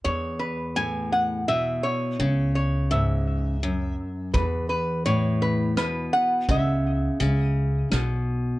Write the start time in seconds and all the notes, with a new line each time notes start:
0.04 E2 C#5
0.39 B4
0.76 A2 G#5
1.12 F#5
1.48 B2 E5
1.83 C#5
2.19 C#2 C#3
2.55 C#5
2.91 G#2 E5
3.63 F#2
4.34 E2 B4, kick, closed hi-hat
4.69 B4
5.06 A2 C#5, closed hi-hat
5.42 B4
5.77 B2 B4, cross-stick, closed hi-hat
6.13 F#5
6.49 C#2 C#3 E5, kick, closed hi-hat
7.20 C#2 C#3, closed hi-hat
7.41 D#5
7.91 B1 B2, cross-stick, closed hi-hat